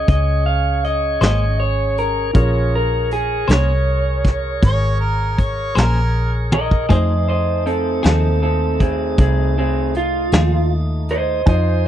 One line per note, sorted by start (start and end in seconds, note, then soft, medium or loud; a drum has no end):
0.00 2.31 C#4 medium
0.00 2.31 F4 soft
0.00 2.31 G#4 medium
0.00 2.31 C#5 medium
0.00 2.32 C6 medium
0.08 1.18 C#2 medium
0.08 0.45 D#5 medium
0.08 kick medium
0.08 closed hi-hat medium
0.46 0.83 F5 medium
0.84 1.20 D#5 medium
0.84 closed hi-hat soft
1.21 2.32 G#1 medium
1.21 1.45 A#3 medium
1.21 1.45 C#4 soft
1.21 1.45 G#4 medium
1.21 1.44 C5 medium
1.21 1.58 D#5 medium
1.21 snare medium
1.21 closed hi-hat medium
1.60 1.96 C#5 medium
1.97 2.35 A#4 medium
1.97 closed hi-hat soft
2.33 3.45 A#1 medium
2.33 6.86 C#4 soft
2.33 6.86 F4 soft
2.33 6.86 G#4 medium
2.33 6.86 G#4 soft
2.33 6.86 A#4 medium
2.33 6.87 A#4 soft
2.33 6.86 C#5 medium
2.33 2.72 C#5 medium
2.33 kick loud
2.33 closed hi-hat medium
2.75 3.11 A#4 medium
3.11 3.49 G#4 medium
3.11 closed hi-hat medium
3.48 4.59 C2 medium
3.48 3.72 A#3 soft
3.48 3.72 C#4 medium
3.48 3.71 G#4 soft
3.48 3.71 C5 medium
3.48 4.98 C#5 medium
3.48 snare medium
3.48 closed hi-hat medium
4.25 kick medium
4.25 snare soft
4.25 closed hi-hat medium
4.63 5.73 G#1 medium
4.63 5.00 C#5 loud
4.63 kick loud
4.63 closed hi-hat medium
5.00 5.41 A#4 medium
5.38 5.76 C#5 medium
5.38 kick medium
5.38 closed hi-hat medium
5.75 6.87 A#1 medium
5.75 6.00 A#3 medium
5.75 5.99 C#4 medium
5.75 5.99 G#4 medium
5.75 6.32 A#4 medium
5.75 5.99 C5 medium
5.75 snare medium
5.75 closed hi-hat medium
6.52 6.90 A#4 medium
6.52 6.90 D#5 medium
6.52 high tom medium
6.71 kick medium
6.89 8.01 F2 medium
6.89 7.13 F3 medium
6.89 11.42 A3 medium
6.89 7.13 A3 medium
6.89 11.42 A3 soft
6.89 11.42 D#4 soft
6.89 11.42 D#4 medium
6.89 7.13 D#4 medium
6.89 7.14 G#4 medium
6.89 7.26 C5 medium
6.89 11.43 C5 medium
6.89 7.28 D#5 medium
6.89 11.42 G#5 soft
6.89 kick loud
6.89 closed hi-hat medium
7.28 7.64 C5 medium
7.28 7.66 D#5 medium
7.66 8.02 C4 medium
7.66 8.03 A4 medium
7.66 closed hi-hat medium
8.03 9.15 D#2 medium
8.03 8.28 F3 soft
8.03 8.27 A3 soft
8.03 8.40 C4 medium
8.03 8.27 D#4 medium
8.03 8.27 G#4 medium
8.03 8.41 A4 medium
8.03 snare medium
8.03 closed hi-hat medium
8.42 8.78 C4 medium
8.42 8.79 A4 medium
8.80 9.16 C4 medium
8.80 9.18 G#4 medium
8.80 kick medium
8.80 closed hi-hat medium
9.18 10.29 C2 medium
9.18 9.54 C4 medium
9.18 9.56 G#4 medium
9.18 kick loud
9.18 closed hi-hat medium
9.58 9.93 C4 medium
9.58 9.94 G#4 medium
9.94 10.69 F4 medium
9.94 closed hi-hat medium
10.32 11.43 D#2 medium
10.32 10.56 F3 soft
10.32 10.56 A3 medium
10.32 10.56 D#4 medium
10.32 10.56 G#4 medium
10.32 snare loud
10.32 closed hi-hat medium
11.09 11.47 C5 medium
11.09 11.47 D#5 medium
11.09 closed hi-hat medium
11.46 11.88 F2 medium
11.46 11.88 D#4 soft
11.46 11.88 D#4 medium
11.46 11.88 F4 soft
11.46 11.88 C5 medium
11.46 11.83 C5 medium
11.46 11.88 C5 medium
11.46 11.84 D#5 medium
11.46 11.88 G#5 soft
11.46 kick loud
11.46 closed hi-hat medium